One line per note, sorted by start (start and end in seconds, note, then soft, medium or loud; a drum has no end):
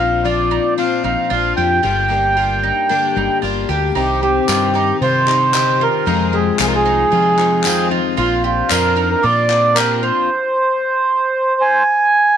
0.00 0.58 A#1 medium
0.00 1.83 A#2 medium
0.00 0.24 C4 soft
0.00 0.77 C4 medium
0.00 0.24 D4 soft
0.00 0.24 D#4 medium
0.00 0.23 F4 medium
0.00 0.24 F4 soft
0.00 0.27 F5 medium
0.24 0.76 F3 medium
0.24 0.77 C4 medium
0.24 0.78 D4 medium
0.24 1.56 F4 medium
0.24 0.51 F4 medium
0.24 0.78 F4 medium
0.24 0.74 D5 medium
0.51 1.30 D4 medium
0.51 0.77 D#4 medium
0.78 1.30 A#2 medium
0.78 1.30 F3 medium
0.78 1.80 C4 medium
0.78 1.31 C4 medium
0.78 1.03 D4 medium
0.78 1.31 D4 medium
0.78 1.31 F4 medium
0.78 1.03 F5 medium
1.03 1.15 A#1 medium
1.03 1.80 F3 medium
1.03 1.30 D#4 medium
1.03 1.53 F5 medium
1.30 1.52 A#1 medium
1.30 1.57 F3 medium
1.30 1.58 C4 medium
1.30 1.80 D4 medium
1.30 1.57 D4 medium
1.30 1.56 F4 medium
1.57 1.79 F2 medium
1.57 1.83 C4 soft
1.57 1.82 D4 soft
1.57 1.83 F4 soft
1.57 1.83 F4 medium
1.57 1.83 G4 medium
1.57 3.38 G5 loud
1.83 2.70 G1 loud
1.83 2.09 G2 medium
1.83 3.92 G2 medium
1.83 2.09 D3 medium
1.83 2.10 G3 medium
1.83 2.10 A#3 medium
1.83 2.10 D4 medium
1.83 2.08 F4 medium
1.83 2.35 G4 medium
1.83 2.09 G4 medium
2.08 2.35 G3 soft
2.08 2.89 A#3 medium
2.08 2.36 A#3 soft
2.08 2.37 D4 soft
2.08 2.35 D#4 medium
2.08 2.36 G4 medium
2.36 2.89 G3 medium
2.36 2.90 A#3 medium
2.36 2.90 D4 medium
2.36 2.62 F4 medium
2.36 3.67 G4 medium
2.36 2.90 G4 medium
2.63 3.41 D4 soft
2.63 2.89 D#4 medium
2.89 3.43 G2 medium
2.89 3.43 D3 medium
2.89 3.41 G3 medium
2.89 3.92 A#3 medium
2.89 3.42 A#3 medium
2.89 3.15 D4 medium
2.89 3.43 D4 medium
2.89 3.43 G4 medium
3.16 3.27 G1 medium
3.16 3.92 G3 medium
3.16 3.42 D#4 medium
3.42 3.64 G1 medium
3.42 3.69 G3 medium
3.42 3.69 A#3 medium
3.42 3.92 D4 soft
3.42 3.69 D4 medium
3.42 3.68 F4 medium
3.42 3.68 G4 medium
3.69 3.90 D2 loud
3.69 3.96 G3 soft
3.69 3.96 A#3 medium
3.69 3.96 D4 soft
3.69 3.92 G4 medium
3.69 3.95 G4 medium
3.95 4.39 C2 medium
3.95 4.48 C3 medium
3.95 4.47 C3 medium
3.95 4.47 D#3 medium
3.95 4.49 C4 medium
3.95 4.21 D#4 medium
3.95 4.49 D#4 medium
3.95 4.21 G4 medium
3.95 4.48 G4 medium
4.22 6.08 C4 medium
4.22 4.97 G4 medium
4.22 4.48 G4 medium
4.48 4.91 G2 medium
4.48 4.74 C3 medium
4.48 4.75 D#3 medium
4.48 5.78 D#3 medium
4.48 4.75 C4 medium
4.48 4.74 D#4 medium
4.48 4.75 D#4 medium
4.48 4.74 F4 medium
4.48 4.72 G4 medium
4.48 clap medium
4.48 tambourine medium
4.74 5.01 C4 soft
4.74 5.01 D#4 soft
4.74 5.01 D#4 medium
4.74 5.02 D#4 medium
4.74 5.00 G4 soft
5.01 6.04 G2 medium
5.01 5.87 C3 medium
5.01 5.28 D#3 medium
5.01 5.28 C4 medium
5.01 6.04 D#4 medium
5.01 5.27 D#4 medium
5.01 5.27 F4 medium
5.01 5.26 G4 medium
5.01 5.83 C5 loud
5.27 5.53 C4 soft
5.27 5.53 D#4 soft
5.27 5.54 D#4 medium
5.27 5.53 G4 medium
5.27 clap medium
5.53 6.05 C3 medium
5.53 5.80 D3 medium
5.53 6.05 D#3 medium
5.53 6.07 C4 medium
5.53 6.07 D#4 medium
5.53 6.07 G4 medium
5.53 5.80 G4 medium
5.53 clap loud
5.53 tambourine medium
5.80 6.06 D#3 medium
5.80 6.07 F4 medium
5.80 6.36 A#4 medium
6.06 6.57 F2 medium
6.06 8.18 F2 medium
6.06 6.50 F2 loud
6.06 6.58 C3 medium
6.06 6.58 D#3 medium
6.06 6.58 F3 medium
6.06 6.58 G#3 medium
6.06 6.32 G#3 medium
6.06 6.60 C4 medium
6.06 6.32 D#4 medium
6.06 6.58 D#4 medium
6.06 6.60 F4 medium
6.06 8.16 G#4 medium
6.33 8.18 G#3 medium
6.33 6.58 G4 medium
6.33 6.59 G#4 medium
6.58 7.03 C2 medium
6.58 6.85 F2 medium
6.58 6.86 C3 medium
6.58 6.86 D#3 medium
6.58 7.63 F3 medium
6.58 6.85 G#3 medium
6.58 6.84 C4 medium
6.58 6.85 D#4 medium
6.58 6.85 F4 medium
6.58 6.84 F4 medium
6.58 6.67 G#4 medium
6.58 clap medium
6.58 tambourine medium
6.67 6.74 A#4 medium
6.75 7.88 G#4 loud
6.85 7.10 D#3 soft
6.85 7.11 G#3 soft
6.85 7.12 C4 soft
6.85 7.11 D#4 medium
6.85 7.12 F4 soft
7.10 7.64 C3 medium
7.10 7.38 D#3 medium
7.10 7.99 F3 medium
7.10 7.38 G#3 medium
7.10 7.38 C4 medium
7.10 7.64 D#4 medium
7.10 7.37 F4 medium
7.38 7.64 D#3 soft
7.38 7.65 G#3 soft
7.38 7.65 C4 soft
7.38 7.64 D#4 medium
7.38 7.65 F4 medium
7.38 clap medium
7.64 8.18 F2 medium
7.64 8.17 C3 medium
7.64 8.18 D#3 medium
7.64 8.14 F3 medium
7.64 8.18 G#3 loud
7.64 8.18 C4 medium
7.64 7.90 D#4 medium
7.64 8.17 F4 loud
7.64 7.91 G4 medium
7.64 clap loud
7.64 tambourine medium
7.91 8.14 D#4 medium
7.91 8.16 F4 medium
8.17 8.61 A#1 loud
8.17 8.68 A#2 medium
8.17 8.68 F3 medium
8.17 8.68 C4 medium
8.17 8.69 D4 medium
8.17 8.43 F4 loud
8.17 8.69 F4 medium
8.44 8.72 F4 medium
8.44 8.70 G4 medium
8.69 9.14 F2 medium
8.69 8.96 A#2 medium
8.69 8.96 F3 medium
8.69 8.96 C4 medium
8.69 8.95 D4 medium
8.69 8.96 F4 medium
8.69 8.94 F4 medium
8.69 9.09 A#4 loud
8.69 clap medium
8.69 tambourine medium
8.95 9.22 C4 soft
8.95 9.23 D4 medium
8.95 9.23 D#4 medium
8.95 9.22 F4 soft
9.11 9.24 A#4 medium
9.22 10.10 A#2 medium
9.22 9.49 F3 medium
9.22 9.50 C4 medium
9.22 9.49 D4 medium
9.22 9.49 F4 medium
9.22 9.48 F4 medium
9.22 9.77 D5 loud
9.49 9.75 C4 soft
9.49 9.76 D4 medium
9.49 9.75 D4 soft
9.49 9.75 F4 medium
9.49 clap medium
9.75 10.29 A#2 medium
9.75 10.29 F3 medium
9.75 10.29 C4 medium
9.75 10.29 D4 medium
9.75 10.29 F4 medium
9.75 10.02 G4 medium
9.75 10.03 A#4 loud
9.75 clap loud
9.75 tambourine medium
10.02 10.29 F4 medium
10.02 11.83 C5 medium
11.61 12.37 G#5 loud